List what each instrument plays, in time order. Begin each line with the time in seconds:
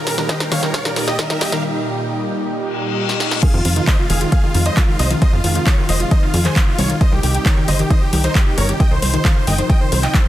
Already playing: analog synth pad A#2 G3 D#4 G4, riser
0.07 grand piano A#4, supersaw synth A#4, snare, open hi-hat
0.18 synth pluck D#3, grand piano A#4, supersaw synth A#4, snare, closed hi-hat
0.29 synth pluck D#3, supersaw synth G4 D#5, grand piano D#5, kick, snare, closed hi-hat
0.40 grand piano A#4, supersaw synth A#4, snare, closed hi-hat
0.51 synth pluck D#3, supersaw synth C#5 F5, grand piano F5, snare, open hi-hat
0.63 synth pluck D#3, grand piano A#4, supersaw synth A#4, snare, closed hi-hat
0.74 supersaw synth C#5 F5, grand piano F5, kick, snare, closed hi-hat
0.85 synth pluck D#3, grand piano A#4, supersaw synth A#4, snare, closed hi-hat
0.96 synth pluck D#3, grand piano A#4, supersaw synth A#4, snare, open hi-hat
1.07 supersaw synth G4 D#5, grand piano D#5, snare, closed hi-hat
1.19 synth pluck D#3, grand piano A#4, supersaw synth A#4, kick, snare, closed hi-hat
1.30 synth pluck D#3, grand piano A#4, supersaw synth A#4, snare, closed hi-hat
1.41 supersaw synth G4 D#5, grand piano D#5, snare, open hi-hat
1.52 synth pluck D#3, supersaw synth A#4, grand piano A#4, snare, closed hi-hat
2.53 reverse cymbal
3.09 snare
3.20 snare
3.31 snare
3.43 analog synth pad C3 F3 G#3 D#4, synth pluck D#3, supersaw synth G#4 F5, grand piano F5, kick, closed hi-hat, crash
3.54 analog synth bass F2, synth pluck D#3, grand piano F4, supersaw synth F4
3.65 analog synth bass F2, grand piano F4, supersaw synth F4, open hi-hat
3.76 synth pluck D#3, supersaw synth F4, grand piano F4, closed hi-hat
3.87 synth pluck D#3, supersaw synth C5 D#5, grand piano D#5, kick, clap, closed hi-hat
3.99 grand piano F4, supersaw synth F4
4.10 analog synth bass F1, synth pluck D#3, supersaw synth G#4 F5, grand piano F5, open hi-hat
4.21 synth pluck D#3, supersaw synth F4, grand piano F4, closed hi-hat
4.32 supersaw synth G#4 F5, grand piano F5, kick, closed hi-hat
4.43 synth pluck D#3, supersaw synth F4, grand piano F4
4.55 analog synth bass F2, synth pluck D#3, grand piano F4, supersaw synth F4, open hi-hat
4.66 supersaw synth C5 D#5, grand piano D#5, closed hi-hat
4.77 synth pluck D#3, supersaw synth F4, grand piano F4, kick, clap, closed hi-hat
4.88 synth pluck D#3, supersaw synth F4, grand piano F4
4.99 analog synth bass C2, supersaw synth C5 D#5, grand piano D#5, open hi-hat
5.10 synth pluck D#3, supersaw synth F4, grand piano F4, closed hi-hat
5.22 synth pluck D#3, supersaw synth C5 D#5, grand piano D#5, kick, closed hi-hat
5.33 analog synth bass F2, supersaw synth F4, grand piano F4
5.44 analog synth bass F2, synth pluck D#3, supersaw synth F4, grand piano F4, open hi-hat
5.55 synth pluck D#3, supersaw synth F4, grand piano F4, closed hi-hat
5.67 supersaw synth F4 C#5, grand piano C#5, kick, clap, closed hi-hat
5.78 synth pluck D#3, supersaw synth F4, grand piano F4
5.89 analog synth bass F1, synth pluck D#3, supersaw synth C5 D#5, grand piano D#5, open hi-hat
6.00 grand piano F4, supersaw synth F4, closed hi-hat
6.11 synth pluck D#3, supersaw synth C5 D#5, grand piano D#5, kick, closed hi-hat
6.23 synth pluck D#3, grand piano F4, supersaw synth F4
6.34 analog synth bass F2, grand piano F4, supersaw synth F4, open hi-hat
6.45 synth pluck D#3, supersaw synth G#4 C5, grand piano C5, clap, closed hi-hat
6.56 synth pluck D#3, supersaw synth F4, kick, clap, closed hi-hat
6.67 grand piano F4, supersaw synth F4
6.79 analog synth bass C2, synth pluck D#3, supersaw synth F4 C#5, grand piano C#5, open hi-hat
6.90 synth pluck D#3, grand piano F4, supersaw synth F4, closed hi-hat
7.01 analog synth pad C3 D#3 G3, supersaw synth C5 D#5, grand piano D#5, kick, closed hi-hat
7.12 analog synth bass C2, synth pluck D#3, grand piano G4, supersaw synth G4
7.23 analog synth bass C2, synth pluck D#3, grand piano G4, supersaw synth G4, open hi-hat
7.35 supersaw synth G4, grand piano G4, closed hi-hat
7.46 synth pluck D#3, supersaw synth A#4 C#5, grand piano C#5, kick, clap, closed hi-hat
7.57 synth pluck D#3, supersaw synth G4, grand piano G4
7.68 analog synth bass G1, supersaw synth C5 D#5, grand piano D#5, open hi-hat
7.79 synth pluck D#3, grand piano G4, supersaw synth G4, closed hi-hat
7.90 synth pluck D#3, supersaw synth C5 D#5, grand piano D#5, kick, closed hi-hat
8.02 supersaw synth G4, grand piano G4
8.13 analog synth bass C2, synth pluck D#3, supersaw synth G4, grand piano G4, open hi-hat
8.24 synth pluck D#3, supersaw synth D#4 C5, grand piano C5, closed hi-hat
8.35 supersaw synth G4, grand piano G4, kick, clap, closed hi-hat
8.46 synth pluck D#3, supersaw synth G4, grand piano G4
8.58 analog synth bass G1, synth pluck D#3, supersaw synth A#4 C#5, grand piano C#5, open hi-hat
8.69 grand piano G4, supersaw synth G4, closed hi-hat
8.80 synth pluck D#3, analog synth pad F3, supersaw synth D#5 G5, grand piano G5, kick, closed hi-hat
8.91 analog synth bass C2, synth pluck D#3, grand piano C5, supersaw synth C5
9.02 analog synth bass C2, supersaw synth C5, grand piano C5, open hi-hat
9.13 synth pluck D#3, supersaw synth C5, grand piano C5, closed hi-hat
9.25 synth pluck D#3, supersaw synth C5 F5, grand piano F5, kick, clap, closed hi-hat
9.36 supersaw synth C5, grand piano C5
9.47 analog synth bass G1, synth pluck D#3, supersaw synth D#5 G5, grand piano G5, open hi-hat
9.58 synth pluck D#3, grand piano C5, supersaw synth C5, closed hi-hat
9.70 supersaw synth D#5 G5, grand piano G5, kick, closed hi-hat
9.81 synth pluck D#3, supersaw synth C5, grand piano C5
9.92 analog synth bass C2, synth pluck D#3, supersaw synth C5, grand piano C5, open hi-hat
10.03 supersaw synth D#5 G5, grand piano G5, clap, closed hi-hat
10.14 synth pluck D#3, supersaw synth C5, grand piano C5, kick, clap, closed hi-hat